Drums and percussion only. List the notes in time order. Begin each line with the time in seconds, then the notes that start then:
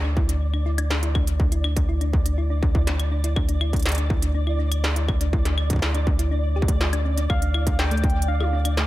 0.17 kick
0.29 closed hi-hat
0.54 claves
0.78 closed hi-hat, claves
0.90 snare
1.03 closed hi-hat
1.15 kick, claves
1.27 closed hi-hat
1.40 kick
1.52 closed hi-hat
1.64 claves
1.77 kick, closed hi-hat
2.01 closed hi-hat
2.13 kick
2.26 closed hi-hat
2.63 kick
2.75 kick
2.87 snare, closed hi-hat
3.00 closed hi-hat, claves
3.24 closed hi-hat
3.36 kick, claves
3.49 closed hi-hat
3.61 claves
3.73 kick, closed hi-hat
3.76 closed hi-hat
3.79 closed hi-hat
3.83 snare, closed hi-hat
3.86 closed hi-hat
3.89 closed hi-hat
3.92 closed hi-hat
3.95 closed hi-hat
3.98 closed hi-hat
4.10 kick
4.22 closed hi-hat
4.47 claves
4.72 closed hi-hat, claves
4.84 snare
4.96 closed hi-hat
5.09 kick, claves
5.21 closed hi-hat
5.33 kick
5.45 snare, closed hi-hat
5.58 claves
5.70 kick, closed hi-hat
5.73 kick
5.76 kick
5.79 kick, snare
5.95 closed hi-hat
6.07 kick
6.19 closed hi-hat
6.62 kick
6.68 kick, closed hi-hat
6.81 snare
6.93 closed hi-hat, claves
7.18 closed hi-hat
7.30 kick, claves
7.42 closed hi-hat
7.54 claves
7.67 kick, closed hi-hat
7.79 snare
7.91 closed hi-hat
7.97 closed hi-hat
8.04 kick, closed hi-hat
8.10 closed hi-hat
8.22 closed hi-hat
8.40 high tom, claves
8.65 closed hi-hat, claves
8.77 snare